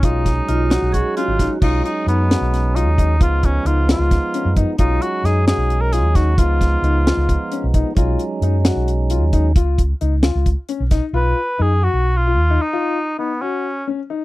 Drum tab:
CC |-------|x------|-------|-------|
HH |xxxxxxx|-xxxxxx|xxxxxxx|xxxxxxx|
SD |-o-o--o|---oo--|---oo--|--oo-oo|
BD |oo--o-o|o-----o|oo--o-o|o-----o|

CC |-------|-------|-------|-------|
HH |xxxxxxx|xxxxxxx|xxxxxxx|-------|
SD |-o-o---|---o---|---o--o|-------|
BD |oo--o-o|o-----o|oo--o-o|-------|

CC |-------|
HH |-------|
SD |-------|
BD |-------|